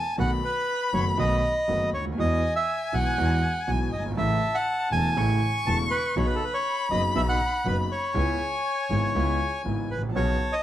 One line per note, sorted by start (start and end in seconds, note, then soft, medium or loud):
0.00 0.16 G#5 medium
0.00 0.21 A5 medium
0.18 0.39 B1 medium
0.18 0.40 B1 medium
0.18 0.40 B2 medium
0.18 0.39 D#3 medium
0.18 0.39 A3 medium
0.18 0.40 B3 soft
0.18 0.40 F#4 medium
0.18 0.31 F#5 medium
0.18 1.94 B5 medium
0.44 0.90 B4 medium
0.93 1.15 F#1 soft
0.93 1.14 F#2 soft
0.93 1.14 D#3 soft
0.93 1.14 A3 soft
0.93 1.15 B3 soft
0.93 1.15 F#4 soft
0.93 1.05 C#5 medium
1.17 1.39 B1 medium
1.17 1.40 B1 medium
1.17 1.39 B2 medium
1.17 1.39 D#3 medium
1.17 1.39 A3 medium
1.17 1.39 B3 medium
1.17 1.39 F#4 medium
1.17 1.90 D#5 medium
1.68 1.89 F#1 soft
1.68 1.90 F#1 soft
1.68 1.89 F#2 soft
1.68 1.89 D#3 soft
1.68 1.89 A3 soft
1.68 1.89 B3 soft
1.68 1.89 F#4 soft
1.94 2.19 D2 soft
1.94 2.05 C#5 medium
2.00 2.06 C#2 soft
2.05 2.12 D2 soft
2.12 2.18 D#2 medium
2.18 2.39 E2 medium
2.18 2.40 E2 medium
2.18 2.39 E3 medium
2.18 2.39 G#3 medium
2.18 2.39 B3 soft
2.18 2.39 F#4 medium
2.18 2.54 D#5 medium
2.18 4.14 G#5 medium
2.56 2.94 E5 medium
2.93 3.14 B1 soft
2.93 3.14 B2 soft
2.93 3.14 E3 soft
2.93 3.14 G#3 soft
2.93 3.14 B3 soft
2.93 3.14 F#4 soft
2.93 3.70 F#5 medium
3.18 3.39 E2 medium
3.18 3.39 E3 medium
3.18 3.39 G#3 medium
3.18 3.39 B3 soft
3.18 3.39 F#4 medium
3.67 3.89 B1 soft
3.67 3.89 B1 medium
3.67 3.89 B2 soft
3.67 3.89 E3 soft
3.67 3.89 G#3 soft
3.67 3.89 B3 soft
3.67 3.89 F#4 soft
3.67 3.79 G#5 medium
3.92 4.18 G1 soft
3.92 4.04 D#5 medium
3.99 4.05 F#1 soft
4.05 4.11 G1 medium
4.11 4.17 G#1 medium
4.17 4.38 A1 medium
4.17 4.39 A1 medium
4.17 4.38 A2 medium
4.17 4.38 C#3 medium
4.17 4.38 E3 medium
4.17 4.38 A3 medium
4.17 4.38 E4 medium
4.17 4.56 E5 medium
4.17 5.19 A5 medium
4.54 4.89 F#5 medium
4.92 5.13 E1 soft
4.92 5.13 E1 medium
4.92 5.13 E2 soft
4.92 5.13 C#3 soft
4.92 5.13 E3 soft
4.92 5.13 A3 soft
4.92 5.13 E4 soft
4.92 5.69 G#5 medium
5.17 5.38 A1 medium
5.17 5.38 A2 medium
5.17 5.38 C#3 medium
5.17 5.38 E3 medium
5.17 5.38 A3 medium
5.17 5.38 E4 medium
5.17 6.19 C#6 loud
5.67 5.88 E1 medium
5.67 5.88 E1 soft
5.67 5.88 E2 medium
5.67 5.88 C#3 soft
5.67 5.88 E3 soft
5.67 5.88 A3 soft
5.67 5.88 E4 soft
5.67 5.78 A5 medium
5.91 6.15 B4 medium
6.16 6.37 B1 medium
6.16 6.37 B2 medium
6.16 6.37 C#3 medium
6.16 6.37 F#3 medium
6.16 6.37 B3 medium
6.16 6.37 D#4 medium
6.16 6.27 C#5 medium
6.16 8.15 B5 loud
6.26 6.35 B4 medium
6.35 6.44 A4 medium
6.44 6.53 B4 medium
6.54 6.88 C#5 medium
6.91 7.12 F#1 medium
6.91 7.12 F#1 soft
6.91 7.12 F#2 soft
6.91 7.12 C#3 soft
6.91 7.12 F#3 soft
6.91 7.12 B3 soft
6.91 7.12 D#4 soft
6.91 7.02 D#5 medium
7.15 7.36 B1 medium
7.15 7.37 B1 medium
7.15 7.36 B2 medium
7.15 7.36 C#3 medium
7.15 7.37 F#3 medium
7.15 7.37 B3 medium
7.15 7.37 D#4 medium
7.15 7.22 E5 medium
7.29 7.67 F#5 medium
7.65 7.86 F#1 medium
7.65 7.87 F#1 soft
7.65 7.87 F#2 soft
7.65 7.86 C#3 soft
7.65 7.87 F#3 soft
7.65 7.87 B3 soft
7.65 7.87 D#4 soft
7.65 7.77 B4 medium
7.92 9.62 C#5 medium
8.14 8.36 C#2 medium
8.14 8.36 C#3 medium
8.14 8.36 G#3 medium
8.14 8.36 B3 soft
8.14 8.36 E4 medium
8.14 9.11 G#5 medium
8.90 9.11 G#1 soft
8.90 9.11 G#2 soft
8.90 9.11 C#3 soft
8.90 9.11 G#3 soft
8.90 9.11 B3 soft
8.90 9.11 E4 soft
9.15 9.36 C#2 medium
9.15 9.37 C#2 medium
9.15 9.36 C#3 medium
9.15 9.36 G#3 medium
9.15 9.36 B3 medium
9.15 9.36 E4 medium
9.15 9.87 G#5 medium
9.65 9.86 G#1 soft
9.65 9.87 G#1 soft
9.65 9.87 G#2 soft
9.65 9.86 C#3 soft
9.65 9.86 G#3 soft
9.65 9.86 B3 soft
9.65 9.87 E4 soft
9.91 10.15 A1 soft
9.91 10.02 B4 medium
9.97 10.03 G#1 soft
10.03 10.09 A1 medium
10.09 10.15 A#1 medium
10.15 10.36 B1 medium
10.15 10.37 B1 medium
10.15 10.37 B2 medium
10.15 10.37 C#3 medium
10.15 10.37 F#3 medium
10.15 10.36 B3 medium
10.15 10.37 B3 soft
10.15 10.36 C#4 medium
10.15 10.37 F#4 medium
10.15 10.54 C#5 medium
10.15 10.63 A5 medium
10.53 10.63 D#5 medium